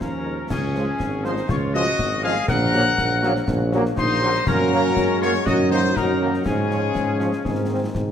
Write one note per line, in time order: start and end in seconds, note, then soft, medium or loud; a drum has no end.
0.01 0.42 D#2 medium
0.01 0.47 F3 medium
0.01 0.47 C#4 medium
0.01 0.47 A#4 medium
0.01 0.47 A#5 medium
0.01 concert bass drum medium
0.01 snare medium
0.26 0.35 G#3 medium
0.26 0.35 D#4 medium
0.50 0.92 C#2 medium
0.50 1.21 C#4 medium
0.50 1.25 G#4 loud
0.50 1.21 G#5 medium
0.50 concert bass drum medium
0.50 snare medium
0.50 crash medium
0.75 0.84 F3 medium
0.75 0.84 G#3 medium
0.75 0.85 G#3 medium
0.75 0.85 C#4 medium
0.75 0.84 F4 medium
0.75 snare soft
1.00 1.42 G#1 medium
1.00 concert bass drum medium
1.00 snare medium
1.24 1.33 F3 medium
1.24 1.33 G#3 medium
1.24 1.34 G#3 medium
1.24 1.34 C#4 medium
1.24 1.50 D#4 loud
1.24 1.34 F4 medium
1.24 1.50 C5 loud
1.24 1.31 C6 medium
1.24 snare medium
1.37 snare medium
1.49 1.91 C#2 loud
1.49 1.73 F4 medium
1.49 1.75 C#5 medium
1.49 1.56 C#6 medium
1.49 concert bass drum loud
1.49 snare medium
1.74 1.84 F3 medium
1.74 1.84 G#3 medium
1.74 1.84 C#4 medium
1.74 1.83 F4 medium
1.74 2.21 F#4 loud
1.74 2.21 D#5 loud
1.74 2.22 D#6 loud
1.74 snare medium
1.86 snare medium
1.99 2.41 G#1 medium
1.99 concert bass drum medium
1.99 snare medium
2.23 2.33 F3 medium
2.23 2.33 G#3 medium
2.23 2.33 C#4 medium
2.23 2.33 F4 medium
2.23 2.47 G#4 loud
2.23 2.47 F5 loud
2.23 2.47 F6 loud
2.36 snare medium
2.48 2.90 A#1 loud
2.48 3.68 A#4 loud
2.48 3.69 F#5 loud
2.48 3.69 F#6 loud
2.48 concert bass drum medium
2.48 snare medium
2.48 crash soft
2.73 2.83 F#3 loud
2.73 2.82 A#3 medium
2.73 2.83 A#3 loud
2.73 2.82 C#4 medium
2.73 2.82 F#4 medium
2.73 snare medium
2.98 3.40 A#1 loud
2.98 concert bass drum medium
2.98 snare medium
3.22 3.33 F#3 loud
3.22 3.31 A#3 loud
3.22 3.33 A#3 medium
3.22 3.32 C#4 medium
3.22 3.31 F#4 medium
3.22 snare medium
3.36 snare medium
3.48 3.89 A#1 loud
3.48 concert bass drum loud
3.48 snare medium
3.72 3.83 F#3 loud
3.72 3.81 A#3 medium
3.72 3.83 A#3 loud
3.72 3.81 C#4 medium
3.72 3.81 F#4 medium
3.72 snare medium
3.85 snare medium
3.97 4.39 A#1 loud
3.97 4.44 D#4 loud
3.97 4.44 C5 loud
3.97 4.49 C6 loud
3.97 concert bass drum medium
3.97 snare medium
4.22 4.31 F#3 loud
4.22 4.31 A#3 loud
4.22 4.31 C#4 medium
4.22 4.31 F#4 medium
4.35 snare medium
4.47 4.91 F#2 loud
4.47 4.93 A#3 loud
4.47 5.17 C#4 medium
4.47 5.43 C#4 loud
4.47 5.43 F#4 loud
4.47 5.22 A#4 loud
4.47 5.23 A#5 loud
4.47 concert bass drum loud
4.47 snare medium
4.47 crash soft
4.72 4.80 F#3 medium
4.72 4.81 A#3 loud
4.72 snare medium
4.96 5.41 F#2 medium
4.96 5.47 G#3 medium
4.96 concert bass drum medium
4.96 snare medium
5.22 5.31 F#3 medium
5.22 5.31 A#3 loud
5.22 5.33 F4 loud
5.22 5.45 C#5 loud
5.22 5.47 C#6 loud
5.22 snare medium
5.34 snare medium
5.45 5.90 F#2 loud
5.45 5.95 F#3 medium
5.45 5.96 D#4 medium
5.45 5.57 F#4 loud
5.45 5.93 F#4 medium
5.45 5.71 D#5 loud
5.45 5.53 D#6 loud
5.45 concert bass drum loud
5.45 snare medium
5.71 5.80 D#3 medium
5.71 5.80 A#3 medium
5.71 5.82 D#4 loud
5.71 5.94 C5 loud
5.71 5.79 C6 loud
5.71 snare medium
5.84 snare medium
5.95 6.40 F#2 medium
5.95 6.43 F#3 medium
5.95 6.42 D#4 medium
5.95 6.43 D#4 medium
5.95 6.43 F#4 medium
5.95 6.46 A#4 loud
5.95 6.43 A#5 medium
5.95 concert bass drum medium
5.95 snare medium
6.21 6.29 D#3 medium
6.21 6.30 A#3 medium
6.34 snare medium
6.45 6.90 G#2 medium
6.45 7.45 F3 medium
6.45 7.45 G#3 medium
6.45 7.90 C#4 loud
6.45 7.41 C#4 medium
6.45 7.91 G#4 loud
6.45 7.91 G#5 medium
6.45 concert bass drum loud
6.45 snare medium
6.45 crash soft
6.71 6.80 F3 medium
6.71 6.80 C#4 medium
6.71 snare medium
6.95 7.32 G#2 medium
6.95 concert bass drum medium
6.95 snare medium
7.20 7.29 F3 medium
7.20 7.29 C#4 medium
7.20 snare medium
7.32 snare medium
7.45 7.89 G#2 medium
7.45 8.12 D#3 medium
7.45 8.12 G#3 medium
7.45 8.12 C4 medium
7.45 concert bass drum medium
7.45 snare medium
7.70 7.78 D#3 medium
7.70 7.78 C4 medium
7.95 8.12 G#2 medium
7.95 concert bass drum medium
7.95 snare medium